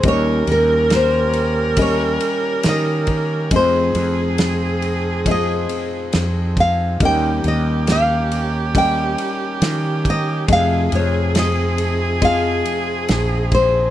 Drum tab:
RD |xxxxxxxx|xxxxxxxx|xxxxxxxx|xxxxxxxx|
SD |--o---o-|--o---o-|--o---o-|--o---o-|
BD |o---o--o|o---o--o|o---o--o|o---o--o|